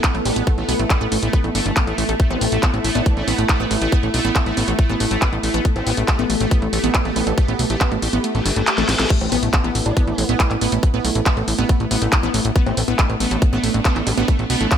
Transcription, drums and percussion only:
0.04 kick loud
0.04 clap loud
0.04 closed hi-hat medium
0.15 closed hi-hat soft
0.25 open hi-hat loud
0.36 closed hi-hat medium
0.47 kick loud
0.47 closed hi-hat soft
0.58 closed hi-hat soft
0.69 open hi-hat loud
0.79 closed hi-hat medium
0.90 kick loud
0.90 clap loud
0.90 closed hi-hat medium
1.01 closed hi-hat soft
1.12 open hi-hat loud
1.23 closed hi-hat soft
1.33 kick loud
1.33 closed hi-hat medium
1.44 closed hi-hat soft
1.55 open hi-hat loud
1.66 closed hi-hat medium
1.77 kick loud
1.77 clap loud
1.77 closed hi-hat medium
1.87 closed hi-hat soft
1.98 open hi-hat medium
2.09 closed hi-hat medium
2.20 kick loud
2.20 closed hi-hat medium
2.31 closed hi-hat soft
2.41 open hi-hat loud
2.52 closed hi-hat soft
2.63 kick loud
2.63 clap loud
2.63 closed hi-hat medium
2.74 closed hi-hat soft
2.84 open hi-hat medium
2.95 closed hi-hat medium
3.06 kick loud
3.06 closed hi-hat medium
3.17 closed hi-hat soft
3.28 open hi-hat loud
3.38 closed hi-hat medium
3.49 kick loud
3.49 clap loud
3.49 closed hi-hat medium
3.60 closed hi-hat soft
3.71 open hi-hat medium
3.82 closed hi-hat medium
3.92 kick loud
3.92 closed hi-hat medium
4.03 closed hi-hat soft
4.14 open hi-hat loud
4.25 closed hi-hat medium
4.36 kick loud
4.36 clap loud
4.36 closed hi-hat medium
4.46 closed hi-hat soft
4.57 open hi-hat medium
4.68 closed hi-hat medium
4.79 kick loud
4.79 closed hi-hat medium
4.89 closed hi-hat soft
5.00 open hi-hat loud
5.11 closed hi-hat medium
5.22 kick loud
5.22 clap loud
5.22 closed hi-hat medium
5.33 closed hi-hat soft
5.43 open hi-hat medium
5.54 closed hi-hat medium
5.65 kick loud
5.65 closed hi-hat medium
5.76 closed hi-hat soft
5.87 open hi-hat loud
5.97 closed hi-hat medium
6.08 kick loud
6.08 clap loud
6.08 closed hi-hat medium
6.19 closed hi-hat soft
6.30 open hi-hat medium
6.41 closed hi-hat medium
6.51 kick loud
6.51 closed hi-hat medium
6.62 closed hi-hat soft
6.73 open hi-hat loud
6.84 closed hi-hat medium
6.94 kick loud
6.94 clap loud
6.94 closed hi-hat medium
7.05 closed hi-hat soft
7.16 open hi-hat medium
7.27 closed hi-hat medium
7.38 kick loud
7.38 closed hi-hat medium
7.48 closed hi-hat soft
7.59 open hi-hat loud
7.70 closed hi-hat medium
7.81 kick loud
7.81 clap loud
7.81 closed hi-hat medium
7.92 closed hi-hat soft
8.02 open hi-hat medium
8.13 closed hi-hat medium
8.24 closed hi-hat medium
8.35 closed hi-hat soft
8.46 open hi-hat loud
8.56 closed hi-hat medium
8.67 clap loud
8.67 closed hi-hat medium
8.78 snare medium
8.78 closed hi-hat soft
8.89 snare medium
8.89 open hi-hat medium
9.00 snare medium
9.00 closed hi-hat medium
9.10 kick loud
9.10 closed hi-hat medium
9.10 crash loud
9.21 closed hi-hat soft
9.32 open hi-hat loud
9.43 closed hi-hat medium
9.54 kick loud
9.54 clap loud
9.54 closed hi-hat medium
9.64 closed hi-hat soft
9.75 open hi-hat medium
9.86 closed hi-hat medium
9.97 kick loud
9.97 closed hi-hat medium
10.07 closed hi-hat soft
10.18 open hi-hat loud
10.29 closed hi-hat medium
10.40 kick loud
10.40 clap loud
10.40 closed hi-hat medium
10.51 clap soft
10.51 closed hi-hat soft
10.61 open hi-hat medium
10.72 closed hi-hat medium
10.83 kick loud
10.83 closed hi-hat medium
10.94 closed hi-hat soft
11.05 open hi-hat loud
11.15 closed hi-hat medium
11.26 kick loud
11.26 clap loud
11.26 closed hi-hat medium
11.37 closed hi-hat soft
11.48 open hi-hat medium
11.59 closed hi-hat medium
11.69 kick loud
11.69 closed hi-hat medium
11.80 closed hi-hat soft
11.91 open hi-hat loud
12.02 closed hi-hat medium
12.12 kick loud
12.12 clap loud
12.12 closed hi-hat medium
12.23 closed hi-hat soft
12.34 open hi-hat loud
12.45 closed hi-hat medium
12.56 kick loud
12.56 closed hi-hat medium
12.66 closed hi-hat soft
12.77 open hi-hat loud
12.88 closed hi-hat soft
12.99 kick loud
12.99 clap loud
12.99 closed hi-hat medium
13.10 closed hi-hat soft
13.20 open hi-hat loud
13.31 closed hi-hat medium
13.42 kick loud
13.42 closed hi-hat medium
13.53 closed hi-hat soft
13.64 open hi-hat loud
13.74 closed hi-hat medium
13.85 kick loud
13.85 clap loud
13.85 closed hi-hat medium
13.96 clap soft
13.96 closed hi-hat soft
14.07 open hi-hat loud
14.18 closed hi-hat medium
14.28 kick loud
14.28 closed hi-hat medium
14.39 closed hi-hat soft
14.50 open hi-hat loud
14.61 closed hi-hat soft
14.71 kick loud
14.71 clap loud
14.71 closed hi-hat medium

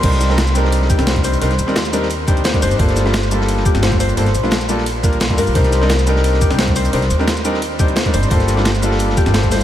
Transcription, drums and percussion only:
0.03 kick loud
0.03 closed hi-hat medium
0.03 closed hi-hat loud
0.03 crash loud
0.03 ride medium
0.13 snare soft
0.13 closed hi-hat soft
0.20 snare medium
0.20 closed hi-hat medium
0.20 shaker medium
0.30 snare soft
0.38 snare loud
0.38 closed hi-hat medium
0.38 closed hi-hat loud
0.38 ride medium
0.47 shaker soft
0.55 closed hi-hat medium
0.55 shaker medium
0.65 snare medium
0.72 closed hi-hat loud
0.72 closed hi-hat medium
0.72 ride medium
0.82 snare soft
0.90 kick loud
0.90 closed hi-hat medium
0.90 shaker medium
0.99 snare medium
0.99 closed hi-hat soft
1.07 snare loud
1.07 closed hi-hat loud
1.07 closed hi-hat medium
1.07 ride medium
1.16 kick medium
1.16 closed hi-hat soft
1.24 closed hi-hat medium
1.24 open hi-hat medium
1.24 shaker medium
1.33 closed hi-hat soft
1.33 shaker soft
1.41 closed hi-hat medium
1.41 closed hi-hat loud
1.41 ride medium
1.50 snare soft
1.50 closed hi-hat soft
1.59 closed hi-hat medium
1.59 shaker medium
1.68 snare soft
1.76 snare loud
1.76 closed hi-hat medium
1.76 ride medium
1.85 shaker soft
1.93 closed hi-hat medium
1.93 shaker medium
2.02 snare soft
2.10 closed hi-hat medium
2.10 closed hi-hat loud
2.10 ride medium
2.28 kick loud
2.28 closed hi-hat medium
2.28 shaker medium
2.37 closed hi-hat soft
2.44 snare loud
2.44 closed hi-hat medium
2.44 closed hi-hat loud
2.44 ride medium
2.54 kick medium
2.54 closed hi-hat soft
2.62 open hi-hat medium
2.62 shaker medium
2.71 closed hi-hat soft
2.71 shaker soft
2.79 kick loud
2.79 closed hi-hat medium
2.79 ride medium
2.89 snare soft
2.89 closed hi-hat soft
2.96 snare medium
2.96 closed hi-hat medium
2.96 shaker medium
3.05 snare soft
3.13 snare loud
3.13 closed hi-hat medium
3.13 ride medium
3.23 shaker soft
3.31 closed hi-hat medium
3.31 shaker medium
3.41 snare medium
3.49 closed hi-hat medium
3.49 ride medium
3.57 snare soft
3.65 kick loud
3.65 closed hi-hat medium
3.65 shaker medium
3.75 snare medium
3.75 closed hi-hat soft
3.83 snare loud
3.83 closed hi-hat loud
3.83 closed hi-hat medium
3.83 ride medium
3.92 kick medium
3.92 closed hi-hat soft
4.00 closed hi-hat medium
4.00 open hi-hat medium
4.00 shaker medium
4.09 closed hi-hat soft
4.09 shaker soft
4.17 closed hi-hat medium
4.17 ride medium
4.26 snare soft
4.26 closed hi-hat soft
4.34 closed hi-hat medium
4.34 shaker medium
4.44 snare soft
4.51 snare loud
4.51 closed hi-hat medium
4.51 ride medium
4.61 shaker soft
4.69 closed hi-hat medium
4.69 shaker medium
4.78 snare soft
4.86 closed hi-hat medium
4.86 ride medium
5.03 kick loud
5.03 closed hi-hat medium
5.03 shaker medium
5.13 closed hi-hat soft
5.20 snare loud
5.20 closed hi-hat medium
5.20 ride medium
5.30 kick medium
5.30 closed hi-hat soft
5.38 open hi-hat medium
5.38 shaker medium
5.47 closed hi-hat soft
5.47 shaker soft
5.55 kick loud
5.55 closed hi-hat medium
5.55 ride medium
5.64 snare soft
5.64 closed hi-hat soft
5.72 snare medium
5.72 closed hi-hat medium
5.72 shaker medium
5.81 snare soft
5.89 snare loud
5.89 closed hi-hat medium
5.89 ride medium
5.99 shaker soft
6.06 closed hi-hat medium
6.06 shaker medium
6.16 snare medium
6.24 closed hi-hat medium
6.24 ride medium
6.33 snare soft
6.41 kick loud
6.41 closed hi-hat medium
6.41 shaker medium
6.51 snare medium
6.51 closed hi-hat soft
6.59 snare loud
6.59 closed hi-hat medium
6.59 ride medium
6.68 kick medium
6.68 closed hi-hat soft
6.76 closed hi-hat medium
6.76 open hi-hat medium
6.76 shaker medium
6.85 closed hi-hat soft
6.85 shaker soft
6.93 closed hi-hat medium
6.93 ride medium
7.02 snare soft
7.02 closed hi-hat soft
7.10 closed hi-hat medium
7.10 shaker medium
7.20 snare soft
7.27 snare loud
7.27 closed hi-hat medium
7.27 closed hi-hat loud
7.27 ride medium
7.37 shaker soft
7.45 closed hi-hat medium
7.45 shaker medium
7.54 snare soft
7.62 closed hi-hat medium
7.62 closed hi-hat loud
7.62 ride medium
7.79 kick loud
7.79 closed hi-hat medium
7.79 shaker medium
7.88 closed hi-hat soft
7.96 snare loud
7.96 closed hi-hat loud
7.96 ride medium
8.06 kick medium
8.06 closed hi-hat soft
8.14 open hi-hat medium
8.14 shaker medium
8.23 closed hi-hat soft
8.23 shaker soft
8.30 kick loud
8.30 closed hi-hat loud
8.30 ride medium
8.40 snare soft
8.40 closed hi-hat soft
8.48 snare soft
8.48 closed hi-hat medium
8.48 shaker medium
8.57 snare soft
8.65 snare loud
8.65 closed hi-hat medium
8.65 closed hi-hat loud
8.65 ride medium
8.75 shaker soft
8.83 closed hi-hat medium
8.83 shaker medium
8.91 snare medium
8.99 closed hi-hat medium
8.99 closed hi-hat loud
8.99 ride medium
9.10 snare medium
9.17 kick loud
9.17 closed hi-hat medium
9.17 shaker medium
9.26 snare medium
9.26 closed hi-hat soft
9.34 snare loud
9.34 closed hi-hat loud
9.34 closed hi-hat medium
9.34 ride medium
9.43 kick medium
9.43 closed hi-hat soft
9.52 snare medium
9.52 closed hi-hat medium
9.52 open hi-hat medium
9.52 shaker medium
9.56 snare medium
9.56 closed hi-hat medium
9.61 snare medium

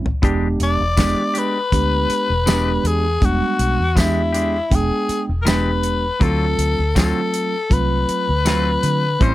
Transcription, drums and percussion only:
0.06 floor tom medium
0.23 kick loud
0.23 closed hi-hat medium
0.60 closed hi-hat medium
0.97 kick medium
0.97 snare loud
0.97 closed hi-hat medium
0.97 tambourine loud
1.35 closed hi-hat medium
1.72 kick medium
1.72 closed hi-hat medium
2.10 closed hi-hat medium
2.47 snare loud
2.47 closed hi-hat medium
2.47 tambourine loud
2.85 closed hi-hat medium
3.22 kick loud
3.22 closed hi-hat medium
3.59 closed hi-hat medium
3.97 kick medium
3.97 snare loud
3.97 closed hi-hat medium
3.97 tambourine loud
4.34 closed hi-hat medium
4.71 kick medium
4.71 closed hi-hat medium
5.09 closed hi-hat medium
5.47 snare loud
5.47 closed hi-hat medium
5.47 tambourine loud
5.83 closed hi-hat medium
6.21 kick loud
6.21 closed hi-hat medium
6.59 closed hi-hat medium
6.96 kick medium
6.96 snare loud
6.96 closed hi-hat medium
6.96 tambourine loud
7.34 closed hi-hat medium
7.71 kick medium
7.71 closed hi-hat medium
8.09 closed hi-hat medium
8.46 snare loud
8.46 closed hi-hat medium
8.46 tambourine loud
8.83 closed hi-hat medium
9.21 kick loud
9.21 closed hi-hat medium

